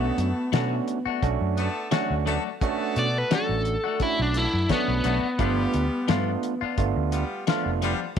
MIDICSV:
0, 0, Header, 1, 8, 480
1, 0, Start_track
1, 0, Key_signature, 2, "minor"
1, 0, Tempo, 694444
1, 1806, Time_signature, 4, 2, 24, 8
1, 5661, End_track
2, 0, Start_track
2, 0, Title_t, "Overdriven electric guitar"
2, 0, Program_c, 0, 29
2, 0, Note_on_c, 0, 59, 97
2, 827, Note_off_c, 0, 59, 0
2, 2066, Note_on_c, 0, 74, 93
2, 2199, Note_off_c, 0, 74, 0
2, 2199, Note_on_c, 0, 71, 74
2, 2296, Note_off_c, 0, 71, 0
2, 2314, Note_on_c, 0, 69, 98
2, 2766, Note_off_c, 0, 69, 0
2, 2782, Note_on_c, 0, 64, 93
2, 2897, Note_off_c, 0, 64, 0
2, 2916, Note_on_c, 0, 62, 90
2, 3023, Note_off_c, 0, 62, 0
2, 3023, Note_on_c, 0, 64, 87
2, 3248, Note_off_c, 0, 64, 0
2, 3265, Note_on_c, 0, 59, 101
2, 4668, Note_off_c, 0, 59, 0
2, 5661, End_track
3, 0, Start_track
3, 0, Title_t, "Clean electric guitar"
3, 0, Program_c, 1, 27
3, 362, Note_on_c, 1, 54, 90
3, 367, Note_on_c, 1, 57, 84
3, 371, Note_on_c, 1, 62, 87
3, 373, Note_on_c, 1, 66, 88
3, 513, Note_off_c, 1, 54, 0
3, 516, Note_off_c, 1, 57, 0
3, 517, Note_off_c, 1, 62, 0
3, 519, Note_off_c, 1, 66, 0
3, 729, Note_on_c, 1, 66, 63
3, 740, Note_on_c, 1, 62, 52
3, 748, Note_on_c, 1, 57, 49
3, 870, Note_off_c, 1, 66, 0
3, 875, Note_off_c, 1, 62, 0
3, 879, Note_off_c, 1, 57, 0
3, 1323, Note_on_c, 1, 54, 86
3, 1329, Note_on_c, 1, 57, 90
3, 1331, Note_on_c, 1, 62, 94
3, 1337, Note_on_c, 1, 66, 103
3, 1474, Note_off_c, 1, 54, 0
3, 1477, Note_off_c, 1, 57, 0
3, 1478, Note_off_c, 1, 62, 0
3, 1481, Note_off_c, 1, 66, 0
3, 1562, Note_on_c, 1, 54, 68
3, 1570, Note_on_c, 1, 57, 63
3, 1575, Note_on_c, 1, 62, 71
3, 1582, Note_on_c, 1, 66, 72
3, 1713, Note_off_c, 1, 54, 0
3, 1718, Note_off_c, 1, 57, 0
3, 1720, Note_off_c, 1, 62, 0
3, 1723, Note_off_c, 1, 66, 0
3, 2287, Note_on_c, 1, 54, 75
3, 2292, Note_on_c, 1, 57, 74
3, 2298, Note_on_c, 1, 62, 85
3, 2300, Note_on_c, 1, 66, 86
3, 2436, Note_off_c, 1, 54, 0
3, 2439, Note_off_c, 1, 57, 0
3, 2442, Note_off_c, 1, 62, 0
3, 2443, Note_off_c, 1, 66, 0
3, 2652, Note_on_c, 1, 66, 55
3, 2661, Note_on_c, 1, 62, 48
3, 2672, Note_on_c, 1, 57, 42
3, 2791, Note_off_c, 1, 66, 0
3, 2796, Note_off_c, 1, 62, 0
3, 2801, Note_off_c, 1, 57, 0
3, 3244, Note_on_c, 1, 54, 78
3, 3248, Note_on_c, 1, 57, 83
3, 3254, Note_on_c, 1, 62, 80
3, 3258, Note_on_c, 1, 66, 80
3, 3395, Note_off_c, 1, 54, 0
3, 3397, Note_off_c, 1, 57, 0
3, 3400, Note_off_c, 1, 62, 0
3, 3402, Note_off_c, 1, 66, 0
3, 3484, Note_on_c, 1, 54, 54
3, 3492, Note_on_c, 1, 57, 57
3, 3496, Note_on_c, 1, 62, 70
3, 3500, Note_on_c, 1, 66, 67
3, 3635, Note_off_c, 1, 54, 0
3, 3639, Note_off_c, 1, 57, 0
3, 3641, Note_off_c, 1, 62, 0
3, 3643, Note_off_c, 1, 66, 0
3, 3724, Note_on_c, 1, 53, 64
3, 3730, Note_on_c, 1, 59, 67
3, 3732, Note_on_c, 1, 62, 71
3, 3737, Note_on_c, 1, 65, 70
3, 3875, Note_off_c, 1, 53, 0
3, 3878, Note_off_c, 1, 59, 0
3, 3879, Note_off_c, 1, 62, 0
3, 3881, Note_off_c, 1, 65, 0
3, 4202, Note_on_c, 1, 53, 87
3, 4208, Note_on_c, 1, 59, 92
3, 4211, Note_on_c, 1, 62, 90
3, 4215, Note_on_c, 1, 65, 86
3, 4354, Note_off_c, 1, 53, 0
3, 4357, Note_off_c, 1, 59, 0
3, 4359, Note_off_c, 1, 62, 0
3, 4360, Note_off_c, 1, 65, 0
3, 4570, Note_on_c, 1, 65, 61
3, 4579, Note_on_c, 1, 62, 51
3, 4588, Note_on_c, 1, 59, 47
3, 4710, Note_off_c, 1, 65, 0
3, 4715, Note_off_c, 1, 62, 0
3, 4720, Note_off_c, 1, 59, 0
3, 5166, Note_on_c, 1, 53, 91
3, 5173, Note_on_c, 1, 59, 86
3, 5175, Note_on_c, 1, 62, 89
3, 5178, Note_on_c, 1, 65, 90
3, 5316, Note_off_c, 1, 53, 0
3, 5319, Note_off_c, 1, 59, 0
3, 5321, Note_off_c, 1, 62, 0
3, 5322, Note_off_c, 1, 65, 0
3, 5404, Note_on_c, 1, 53, 67
3, 5411, Note_on_c, 1, 59, 74
3, 5418, Note_on_c, 1, 62, 71
3, 5423, Note_on_c, 1, 65, 79
3, 5555, Note_off_c, 1, 53, 0
3, 5558, Note_off_c, 1, 59, 0
3, 5562, Note_off_c, 1, 62, 0
3, 5564, Note_off_c, 1, 65, 0
3, 5661, End_track
4, 0, Start_track
4, 0, Title_t, "Tine electric piano"
4, 0, Program_c, 2, 4
4, 0, Note_on_c, 2, 57, 74
4, 0, Note_on_c, 2, 61, 70
4, 0, Note_on_c, 2, 62, 66
4, 0, Note_on_c, 2, 66, 85
4, 195, Note_off_c, 2, 57, 0
4, 196, Note_off_c, 2, 61, 0
4, 196, Note_off_c, 2, 62, 0
4, 196, Note_off_c, 2, 66, 0
4, 371, Note_on_c, 2, 66, 96
4, 372, Note_on_c, 2, 61, 77
4, 372, Note_on_c, 2, 62, 78
4, 373, Note_on_c, 2, 57, 82
4, 677, Note_off_c, 2, 61, 0
4, 677, Note_off_c, 2, 66, 0
4, 678, Note_off_c, 2, 57, 0
4, 678, Note_off_c, 2, 62, 0
4, 848, Note_on_c, 2, 61, 80
4, 850, Note_on_c, 2, 57, 88
4, 850, Note_on_c, 2, 66, 97
4, 851, Note_on_c, 2, 62, 84
4, 1156, Note_off_c, 2, 61, 0
4, 1157, Note_off_c, 2, 57, 0
4, 1157, Note_off_c, 2, 62, 0
4, 1157, Note_off_c, 2, 66, 0
4, 1324, Note_on_c, 2, 62, 84
4, 1324, Note_on_c, 2, 66, 105
4, 1325, Note_on_c, 2, 57, 89
4, 1325, Note_on_c, 2, 61, 87
4, 1634, Note_off_c, 2, 57, 0
4, 1634, Note_off_c, 2, 61, 0
4, 1634, Note_off_c, 2, 62, 0
4, 1634, Note_off_c, 2, 66, 0
4, 1808, Note_on_c, 2, 57, 88
4, 1809, Note_on_c, 2, 61, 78
4, 1809, Note_on_c, 2, 62, 77
4, 1810, Note_on_c, 2, 66, 96
4, 2116, Note_off_c, 2, 57, 0
4, 2116, Note_off_c, 2, 61, 0
4, 2116, Note_off_c, 2, 62, 0
4, 2117, Note_off_c, 2, 66, 0
4, 2287, Note_on_c, 2, 61, 65
4, 2288, Note_on_c, 2, 62, 64
4, 2289, Note_on_c, 2, 66, 82
4, 2290, Note_on_c, 2, 57, 70
4, 2596, Note_off_c, 2, 61, 0
4, 2596, Note_off_c, 2, 62, 0
4, 2597, Note_off_c, 2, 57, 0
4, 2597, Note_off_c, 2, 66, 0
4, 2771, Note_on_c, 2, 57, 68
4, 2771, Note_on_c, 2, 66, 78
4, 2773, Note_on_c, 2, 61, 65
4, 2774, Note_on_c, 2, 62, 68
4, 3078, Note_off_c, 2, 57, 0
4, 3078, Note_off_c, 2, 61, 0
4, 3078, Note_off_c, 2, 66, 0
4, 3079, Note_off_c, 2, 62, 0
4, 3248, Note_on_c, 2, 57, 78
4, 3250, Note_on_c, 2, 61, 69
4, 3250, Note_on_c, 2, 66, 83
4, 3251, Note_on_c, 2, 62, 74
4, 3556, Note_off_c, 2, 57, 0
4, 3557, Note_off_c, 2, 61, 0
4, 3557, Note_off_c, 2, 62, 0
4, 3557, Note_off_c, 2, 66, 0
4, 3727, Note_on_c, 2, 57, 71
4, 3729, Note_on_c, 2, 65, 78
4, 3730, Note_on_c, 2, 59, 61
4, 3731, Note_on_c, 2, 62, 67
4, 4036, Note_off_c, 2, 57, 0
4, 4036, Note_off_c, 2, 65, 0
4, 4037, Note_off_c, 2, 59, 0
4, 4037, Note_off_c, 2, 62, 0
4, 4207, Note_on_c, 2, 65, 99
4, 4208, Note_on_c, 2, 62, 77
4, 4209, Note_on_c, 2, 57, 82
4, 4210, Note_on_c, 2, 59, 77
4, 4516, Note_off_c, 2, 62, 0
4, 4516, Note_off_c, 2, 65, 0
4, 4517, Note_off_c, 2, 57, 0
4, 4517, Note_off_c, 2, 59, 0
4, 4688, Note_on_c, 2, 57, 85
4, 4689, Note_on_c, 2, 59, 78
4, 4689, Note_on_c, 2, 65, 96
4, 4690, Note_on_c, 2, 62, 80
4, 4996, Note_off_c, 2, 57, 0
4, 4997, Note_off_c, 2, 59, 0
4, 4997, Note_off_c, 2, 62, 0
4, 4997, Note_off_c, 2, 65, 0
4, 5170, Note_on_c, 2, 59, 85
4, 5171, Note_on_c, 2, 57, 97
4, 5172, Note_on_c, 2, 62, 84
4, 5174, Note_on_c, 2, 65, 104
4, 5477, Note_off_c, 2, 57, 0
4, 5477, Note_off_c, 2, 59, 0
4, 5478, Note_off_c, 2, 62, 0
4, 5479, Note_off_c, 2, 65, 0
4, 5661, End_track
5, 0, Start_track
5, 0, Title_t, "Horn section"
5, 0, Program_c, 3, 61
5, 0, Note_on_c, 3, 57, 81
5, 0, Note_on_c, 3, 59, 73
5, 0, Note_on_c, 3, 66, 70
5, 0, Note_on_c, 3, 69, 88
5, 360, Note_off_c, 3, 59, 0
5, 361, Note_off_c, 3, 66, 0
5, 365, Note_off_c, 3, 57, 0
5, 365, Note_off_c, 3, 69, 0
5, 1082, Note_on_c, 3, 59, 85
5, 1085, Note_on_c, 3, 62, 81
5, 1087, Note_on_c, 3, 57, 88
5, 1087, Note_on_c, 3, 69, 96
5, 1324, Note_off_c, 3, 59, 0
5, 1326, Note_off_c, 3, 62, 0
5, 1327, Note_off_c, 3, 57, 0
5, 1327, Note_off_c, 3, 69, 0
5, 1558, Note_on_c, 3, 59, 76
5, 1564, Note_on_c, 3, 62, 71
5, 1568, Note_on_c, 3, 57, 78
5, 1568, Note_on_c, 3, 69, 85
5, 1669, Note_off_c, 3, 59, 0
5, 1675, Note_off_c, 3, 62, 0
5, 1678, Note_off_c, 3, 57, 0
5, 1678, Note_off_c, 3, 69, 0
5, 1806, Note_on_c, 3, 59, 89
5, 1810, Note_on_c, 3, 66, 83
5, 1814, Note_on_c, 3, 57, 91
5, 1814, Note_on_c, 3, 69, 99
5, 2286, Note_off_c, 3, 59, 0
5, 2288, Note_off_c, 3, 66, 0
5, 2290, Note_off_c, 3, 57, 0
5, 2290, Note_off_c, 3, 69, 0
5, 3005, Note_on_c, 3, 59, 67
5, 3006, Note_on_c, 3, 62, 63
5, 3009, Note_on_c, 3, 57, 68
5, 3009, Note_on_c, 3, 69, 74
5, 3246, Note_off_c, 3, 59, 0
5, 3246, Note_off_c, 3, 62, 0
5, 3248, Note_off_c, 3, 57, 0
5, 3248, Note_off_c, 3, 69, 0
5, 3482, Note_on_c, 3, 59, 65
5, 3484, Note_on_c, 3, 57, 67
5, 3484, Note_on_c, 3, 62, 58
5, 3484, Note_on_c, 3, 69, 73
5, 3593, Note_off_c, 3, 59, 0
5, 3594, Note_off_c, 3, 62, 0
5, 3595, Note_off_c, 3, 57, 0
5, 3595, Note_off_c, 3, 69, 0
5, 3721, Note_on_c, 3, 59, 74
5, 3724, Note_on_c, 3, 65, 70
5, 3727, Note_on_c, 3, 55, 80
5, 3727, Note_on_c, 3, 67, 87
5, 4204, Note_off_c, 3, 59, 0
5, 4206, Note_off_c, 3, 65, 0
5, 4207, Note_off_c, 3, 55, 0
5, 4207, Note_off_c, 3, 67, 0
5, 4921, Note_on_c, 3, 59, 86
5, 4924, Note_on_c, 3, 65, 79
5, 4929, Note_on_c, 3, 55, 84
5, 4929, Note_on_c, 3, 67, 91
5, 5164, Note_off_c, 3, 59, 0
5, 5165, Note_off_c, 3, 65, 0
5, 5168, Note_off_c, 3, 55, 0
5, 5168, Note_off_c, 3, 67, 0
5, 5410, Note_on_c, 3, 59, 76
5, 5410, Note_on_c, 3, 65, 73
5, 5416, Note_on_c, 3, 55, 82
5, 5416, Note_on_c, 3, 67, 90
5, 5520, Note_off_c, 3, 59, 0
5, 5521, Note_off_c, 3, 65, 0
5, 5527, Note_off_c, 3, 55, 0
5, 5527, Note_off_c, 3, 67, 0
5, 5661, End_track
6, 0, Start_track
6, 0, Title_t, "Fingered electric bass"
6, 0, Program_c, 4, 33
6, 122, Note_on_c, 4, 42, 81
6, 219, Note_off_c, 4, 42, 0
6, 365, Note_on_c, 4, 47, 88
6, 547, Note_off_c, 4, 47, 0
6, 848, Note_on_c, 4, 35, 90
6, 943, Note_off_c, 4, 35, 0
6, 974, Note_on_c, 4, 42, 94
6, 1155, Note_off_c, 4, 42, 0
6, 1454, Note_on_c, 4, 38, 84
6, 1635, Note_off_c, 4, 38, 0
6, 2049, Note_on_c, 4, 47, 87
6, 2230, Note_off_c, 4, 47, 0
6, 2413, Note_on_c, 4, 33, 89
6, 2595, Note_off_c, 4, 33, 0
6, 2899, Note_on_c, 4, 35, 94
6, 3079, Note_off_c, 4, 35, 0
6, 3134, Note_on_c, 4, 42, 80
6, 3220, Note_off_c, 4, 42, 0
6, 3373, Note_on_c, 4, 35, 87
6, 3459, Note_off_c, 4, 35, 0
6, 3490, Note_on_c, 4, 35, 86
6, 3585, Note_off_c, 4, 35, 0
6, 3724, Note_on_c, 4, 31, 100
6, 3907, Note_off_c, 4, 31, 0
6, 3969, Note_on_c, 4, 38, 84
6, 4064, Note_off_c, 4, 38, 0
6, 4209, Note_on_c, 4, 43, 86
6, 4390, Note_off_c, 4, 43, 0
6, 4687, Note_on_c, 4, 31, 90
6, 4783, Note_off_c, 4, 31, 0
6, 4812, Note_on_c, 4, 38, 96
6, 4994, Note_off_c, 4, 38, 0
6, 5292, Note_on_c, 4, 29, 84
6, 5474, Note_off_c, 4, 29, 0
6, 5661, End_track
7, 0, Start_track
7, 0, Title_t, "Muted fingered electric bass strokes"
7, 732, Note_on_c, 9, 29, 36
7, 801, Note_off_c, 9, 29, 0
7, 2765, Note_on_c, 9, 29, 36
7, 2834, Note_off_c, 9, 29, 0
7, 3617, Note_on_c, 9, 29, 35
7, 3686, Note_off_c, 9, 29, 0
7, 4575, Note_on_c, 9, 29, 36
7, 4644, Note_off_c, 9, 29, 0
7, 5661, End_track
8, 0, Start_track
8, 0, Title_t, "Drums"
8, 125, Note_on_c, 9, 42, 71
8, 194, Note_off_c, 9, 42, 0
8, 366, Note_on_c, 9, 42, 86
8, 372, Note_on_c, 9, 38, 113
8, 435, Note_off_c, 9, 42, 0
8, 441, Note_off_c, 9, 38, 0
8, 606, Note_on_c, 9, 42, 59
8, 675, Note_off_c, 9, 42, 0
8, 847, Note_on_c, 9, 36, 77
8, 849, Note_on_c, 9, 42, 81
8, 916, Note_off_c, 9, 36, 0
8, 918, Note_off_c, 9, 42, 0
8, 1088, Note_on_c, 9, 42, 61
8, 1157, Note_off_c, 9, 42, 0
8, 1324, Note_on_c, 9, 42, 76
8, 1329, Note_on_c, 9, 38, 110
8, 1393, Note_off_c, 9, 42, 0
8, 1398, Note_off_c, 9, 38, 0
8, 1570, Note_on_c, 9, 42, 56
8, 1639, Note_off_c, 9, 42, 0
8, 1807, Note_on_c, 9, 36, 105
8, 1809, Note_on_c, 9, 42, 79
8, 1876, Note_off_c, 9, 36, 0
8, 1878, Note_off_c, 9, 42, 0
8, 2046, Note_on_c, 9, 42, 57
8, 2116, Note_off_c, 9, 42, 0
8, 2287, Note_on_c, 9, 42, 83
8, 2292, Note_on_c, 9, 38, 104
8, 2356, Note_off_c, 9, 42, 0
8, 2361, Note_off_c, 9, 38, 0
8, 2524, Note_on_c, 9, 42, 52
8, 2593, Note_off_c, 9, 42, 0
8, 2763, Note_on_c, 9, 42, 77
8, 2765, Note_on_c, 9, 36, 79
8, 2832, Note_off_c, 9, 42, 0
8, 2834, Note_off_c, 9, 36, 0
8, 3001, Note_on_c, 9, 42, 62
8, 3071, Note_off_c, 9, 42, 0
8, 3244, Note_on_c, 9, 42, 77
8, 3246, Note_on_c, 9, 36, 71
8, 3250, Note_on_c, 9, 38, 100
8, 3314, Note_off_c, 9, 42, 0
8, 3315, Note_off_c, 9, 36, 0
8, 3319, Note_off_c, 9, 38, 0
8, 3483, Note_on_c, 9, 42, 56
8, 3552, Note_off_c, 9, 42, 0
8, 3725, Note_on_c, 9, 42, 86
8, 3726, Note_on_c, 9, 36, 105
8, 3794, Note_off_c, 9, 42, 0
8, 3795, Note_off_c, 9, 36, 0
8, 3965, Note_on_c, 9, 42, 70
8, 4034, Note_off_c, 9, 42, 0
8, 4205, Note_on_c, 9, 42, 82
8, 4210, Note_on_c, 9, 38, 107
8, 4274, Note_off_c, 9, 42, 0
8, 4279, Note_off_c, 9, 38, 0
8, 4445, Note_on_c, 9, 42, 60
8, 4514, Note_off_c, 9, 42, 0
8, 4684, Note_on_c, 9, 42, 87
8, 4685, Note_on_c, 9, 36, 78
8, 4753, Note_off_c, 9, 42, 0
8, 4754, Note_off_c, 9, 36, 0
8, 4923, Note_on_c, 9, 42, 66
8, 4992, Note_off_c, 9, 42, 0
8, 5165, Note_on_c, 9, 42, 82
8, 5170, Note_on_c, 9, 38, 99
8, 5234, Note_off_c, 9, 42, 0
8, 5240, Note_off_c, 9, 38, 0
8, 5406, Note_on_c, 9, 42, 61
8, 5475, Note_off_c, 9, 42, 0
8, 5661, End_track
0, 0, End_of_file